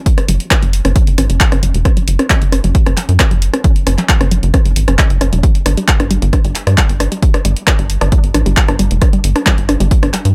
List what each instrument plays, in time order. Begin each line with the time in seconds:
0.06 kick, closed hi-hat
0.18 synth arpeggio sound C#4, cross-stick, closed hi-hat
0.28 analog synth bass F#1, synth arpeggio sound F#3, open hi-hat
0.40 closed hi-hat
0.51 synth arpeggio sound C#4, kick, cross-stick, clap, closed hi-hat
0.62 analog synth bass F#1, synth arpeggio sound F#3, closed hi-hat
0.73 open hi-hat
0.85 analog synth bass F#1, synth arpeggio sound C#4, cross-stick, closed hi-hat
0.96 synth arpeggio sound F#3, kick, closed hi-hat
1.07 analog synth bass F#1, closed hi-hat
1.18 analog synth bass G#1, synth arpeggio sound C#4, cross-stick, open hi-hat
1.30 analog synth bass F#1, synth arpeggio sound F#3, closed hi-hat
1.40 kick, clap, closed hi-hat
1.52 analog synth bass F#1, synth arpeggio sound C#4, cross-stick, closed hi-hat
1.63 analog synth bass F#1, synth arpeggio sound F#3, open hi-hat
1.74 analog synth bass E1, closed hi-hat
1.85 synth arpeggio sound C#4, kick, cross-stick, closed hi-hat
1.97 synth arpeggio sound F#3, closed hi-hat
2.08 analog synth bass F#1, open hi-hat
2.19 synth arpeggio sound C#4, cross-stick, closed hi-hat
2.30 synth arpeggio sound F#3, kick, clap, closed hi-hat
2.42 analog synth bass F#1, closed hi-hat
2.52 synth arpeggio sound C#4, cross-stick, open hi-hat
2.64 analog synth bass F#1, synth arpeggio sound F#3, closed hi-hat
2.75 kick, closed hi-hat
2.86 analog synth bass F#1, synth arpeggio sound C#4, cross-stick, closed hi-hat
2.97 synth arpeggio sound F#3, clap, open hi-hat
3.09 analog synth bass F#2, closed hi-hat
3.19 synth arpeggio sound C#4, kick, cross-stick, clap, closed hi-hat
3.31 analog synth bass F#1, synth arpeggio sound F#3, closed hi-hat
3.42 open hi-hat
3.53 synth arpeggio sound C#4, cross-stick, closed hi-hat
3.64 synth arpeggio sound F#3, kick, closed hi-hat
3.76 closed hi-hat
3.87 analog synth bass F#1, synth arpeggio sound C#4, cross-stick, open hi-hat
3.98 synth arpeggio sound F#3, clap, closed hi-hat
4.09 kick, clap, closed hi-hat
4.21 analog synth bass F#1, synth arpeggio sound C#4, cross-stick, closed hi-hat
4.31 synth arpeggio sound F#3, open hi-hat
4.43 analog synth bass F#1, closed hi-hat
4.54 synth arpeggio sound C#4, kick, cross-stick, closed hi-hat
4.65 analog synth bass F#1, synth arpeggio sound F#3, closed hi-hat
4.76 analog synth bass G#1, open hi-hat
4.88 analog synth bass F#1, synth arpeggio sound C#4, cross-stick, closed hi-hat
4.99 synth arpeggio sound F#3, kick, clap, closed hi-hat
5.10 analog synth bass F#1, closed hi-hat
5.21 analog synth bass F#1, synth arpeggio sound C#4, cross-stick, open hi-hat
5.33 analog synth bass E1, synth arpeggio sound F#3, closed hi-hat
5.43 synth arpeggio sound G3, kick, closed hi-hat
5.55 closed hi-hat
5.66 analog synth bass G1, synth arpeggio sound D4, cross-stick, open hi-hat
5.77 synth arpeggio sound G3, closed hi-hat
5.88 kick, clap, closed hi-hat
6.00 analog synth bass G1, synth arpeggio sound D4, cross-stick, closed hi-hat
6.11 synth arpeggio sound G3, open hi-hat
6.22 analog synth bass G1, closed hi-hat
6.33 synth arpeggio sound D4, kick, cross-stick, closed hi-hat
6.45 analog synth bass G1, synth arpeggio sound G3, closed hi-hat
6.55 clap, open hi-hat
6.67 analog synth bass G2, synth arpeggio sound D4, cross-stick, closed hi-hat
6.78 synth arpeggio sound G3, kick, clap, closed hi-hat
6.89 analog synth bass G1, closed hi-hat
7.00 synth arpeggio sound D4, cross-stick, open hi-hat
7.12 synth arpeggio sound G3, closed hi-hat
7.22 kick, closed hi-hat
7.34 synth arpeggio sound D4, cross-stick, closed hi-hat
7.45 analog synth bass G1, synth arpeggio sound G3, open hi-hat
7.57 closed hi-hat
7.67 synth arpeggio sound D4, kick, cross-stick, clap, closed hi-hat
7.79 analog synth bass G1, synth arpeggio sound G3, closed hi-hat
7.90 open hi-hat
8.01 analog synth bass G1, synth arpeggio sound D4, cross-stick, closed hi-hat
8.12 synth arpeggio sound G3, kick, closed hi-hat
8.24 analog synth bass G1, closed hi-hat
8.34 analog synth bass A1, synth arpeggio sound D4, cross-stick, open hi-hat
8.46 analog synth bass G1, synth arpeggio sound G3, closed hi-hat
8.57 kick, clap, closed hi-hat
8.68 analog synth bass G1, synth arpeggio sound D4, cross-stick, closed hi-hat
8.79 analog synth bass G1, synth arpeggio sound G3, open hi-hat
8.91 analog synth bass F1, closed hi-hat
9.02 synth arpeggio sound D4, kick, cross-stick, closed hi-hat
9.13 synth arpeggio sound G3, closed hi-hat
9.24 analog synth bass G1, open hi-hat
9.36 synth arpeggio sound D4, cross-stick, closed hi-hat
9.46 synth arpeggio sound G3, kick, clap, closed hi-hat
9.58 analog synth bass G1, closed hi-hat
9.69 synth arpeggio sound D4, cross-stick, open hi-hat
9.80 analog synth bass G1, synth arpeggio sound G3, closed hi-hat
9.91 kick, closed hi-hat
10.03 analog synth bass G1, synth arpeggio sound D4, cross-stick, closed hi-hat
10.14 synth arpeggio sound G3, clap, open hi-hat
10.25 analog synth bass G2, closed hi-hat